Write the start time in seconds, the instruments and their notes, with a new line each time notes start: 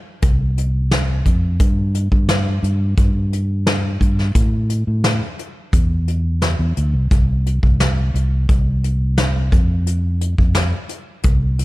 0.22 fingered electric bass C2, kick, closed hi-hat
0.58 closed hi-hat
0.91 snare, closed hi-hat
1.26 fingered electric bass F2, kick, closed hi-hat
1.60 fingered electric bass G2, kick, closed hi-hat
1.95 closed hi-hat
2.12 fingered electric bass G2, kick
2.29 snare, closed hi-hat
2.63 fingered electric bass G2, closed hi-hat
2.97 fingered electric bass G2, kick, closed hi-hat
3.33 closed hi-hat
3.67 snare, closed hi-hat
4.01 fingered electric bass G2, kick, closed hi-hat
4.19 snare
4.35 fingered electric bass A2, kick, closed hi-hat
4.70 closed hi-hat
4.87 fingered electric bass A2
5.04 snare, closed hi-hat
5.39 closed hi-hat
5.73 fingered electric bass E2, kick, closed hi-hat
6.08 closed hi-hat
6.42 snare, closed hi-hat
6.59 fingered electric bass E2
6.77 fingered electric bass D2, closed hi-hat
6.93 fingered electric bass C2
7.11 fingered electric bass C2, kick, closed hi-hat
7.46 closed hi-hat
7.63 fingered electric bass C2, kick
7.80 snare, closed hi-hat
8.14 fingered electric bass C2, closed hi-hat
8.49 fingered electric bass C2, kick, closed hi-hat
8.84 closed hi-hat
9.18 snare, closed hi-hat
9.52 fingered electric bass F2, kick, closed hi-hat
9.87 closed hi-hat
10.21 closed hi-hat
10.38 fingered electric bass F2, kick
10.55 snare, closed hi-hat
10.89 closed hi-hat
11.23 fingered electric bass C2, kick, closed hi-hat
11.59 closed hi-hat